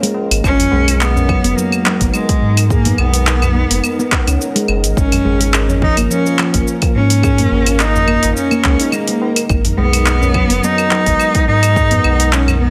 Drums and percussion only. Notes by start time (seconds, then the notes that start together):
0.02 open hi-hat, tabla tin, shaker
0.14 tabla na
0.31 open hi-hat, claves, shaker
0.44 kick, claves, shaker
0.59 open hi-hat, tabla ge, shaker
0.71 tabla na
0.88 open hi-hat, claves, shaker
1.01 clap, shaker
1.16 tabla ge, shaker
1.29 kick, claves
1.44 open hi-hat, shaker
1.58 shaker
1.72 claves, shaker
1.85 clap, tabla na
2.01 kick, open hi-hat, shaker
2.14 claves, shaker
2.29 kick, open hi-hat, tabla tin, shaker
2.57 open hi-hat, claves, shaker
2.70 kick, shaker
2.85 open hi-hat, tabla ge, shaker
2.98 tabla na, claves
3.14 open hi-hat, tabla tin, shaker
3.27 clap, shaker
3.42 tabla ge, claves, shaker
3.70 open hi-hat, tabla na, shaker
3.84 claves, shaker
3.99 tabla tin, shaker
4.12 kick, clap, tabla na
4.27 open hi-hat, claves, shaker
4.41 shaker
4.56 open hi-hat, tabla tin, shaker
4.68 tabla na, claves
4.84 open hi-hat, shaker
4.97 kick, shaker
5.12 open hi-hat, tabla ge, claves, shaker
5.25 tabla na
5.41 open hi-hat, shaker
5.54 clap, claves, shaker
5.69 tabla ge, shaker
5.82 kick
5.97 open hi-hat, claves, shaker
6.11 shaker
6.26 shaker
6.39 clap, tabla na, claves
6.54 kick, open hi-hat, shaker
6.67 shaker
6.82 kick, open hi-hat, tabla tin, claves, shaker
7.10 open hi-hat, shaker
7.23 kick, claves, shaker
7.38 open hi-hat, tabla ge, shaker
7.52 tabla na
7.66 open hi-hat, tabla tin, claves, shaker
7.79 clap, shaker
7.96 tabla ge, shaker
8.08 claves
8.23 open hi-hat, tabla na, shaker
8.37 shaker
8.51 tabla tin, claves, shaker
8.64 kick, clap, tabla na
8.80 open hi-hat, shaker
8.92 claves, shaker
9.07 open hi-hat, tabla tin, shaker
9.22 tabla na
9.36 open hi-hat, claves, shaker
9.49 kick, claves, shaker
9.65 open hi-hat, tabla ge, shaker
9.78 tabla na
9.93 open hi-hat, claves, shaker
10.06 clap, shaker
10.21 tabla ge, shaker
10.34 kick, claves
10.50 open hi-hat, shaker
10.64 shaker
10.78 claves, shaker
10.91 clap, tabla na
11.06 kick, open hi-hat, shaker
11.20 claves, shaker
11.35 kick, open hi-hat, tabla tin, shaker
11.63 open hi-hat, claves, shaker
11.76 kick, shaker
11.91 open hi-hat, tabla ge, shaker
12.04 tabla na, claves
12.20 open hi-hat, tabla tin, shaker
12.33 clap, shaker
12.48 tabla ge, claves, shaker